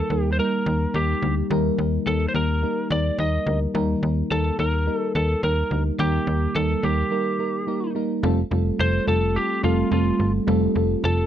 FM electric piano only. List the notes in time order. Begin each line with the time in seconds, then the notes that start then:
Already playing: D#3 G3 A#3 D#4 A#4
0.10 G3 A#3 D#4 A#4
0.38 G3 A#3 D#4 A#4
0.66 G3 A#3 D#4 A#4
0.94 G3 A#3 D#4 A#4
1.22 G3 A#3 D#4 G4
1.50 D#3 G3 A#3 D#4 A#4
1.78 G3 A#3 D#4 A#4
2.06 G3 A#3 D#4 A#4
2.34 G3 A#3 D#4 A#4
2.62 G3 A#3 D#4 A#4
2.90 G3 A#3 D#4 A#4
3.18 G3 A#3 D#4 A#4
3.46 G3 A#3 D#4 A#4
3.74 D#3 G3 A#3 D#4 A#4
4.02 G3 A#3 D#4 A#4
4.30 G3 A#3 D#4 A#4
4.58 G3 A#3 D#4 A#4
4.86 G3 A#3 D#4 A#4
5.14 G3 A#3 D#4 A#4
5.42 G3 A#3 D#4 A#4
5.70 G3 A#3 D#4 A#4
5.98 D#3 G3 A#3 D#4 A#4
6.27 G3 A#3 D#4 A#4
6.55 G3 A#3 D#4 A#4
6.83 G3 A#3 D#4 A#4
7.10 G3 A#3 D#4 A#4
7.39 G3 A#3 D#4 A#4
7.67 G3 A#3 D#4 A#4
7.95 G3 A#3 D#4 A#4
8.23 G3 A3 C4 F4 A4
8.51 G3 A3 C4 F4 A4
8.79 G3 A3 C4 F4 A4
9.07 G3 A3 C4 F4 A4
9.35 G3 A3 C4 F4 A4
9.63 G3 A3 C4 F4 A4
9.91 G3 A3 C4 F4 A4
10.19 G3 A3 C4 F4 A4
10.47 G3 A3 C4 F4 A4
10.75 G3 A3 C4 F4 A4
11.03 G3 A3 C4 F4 A4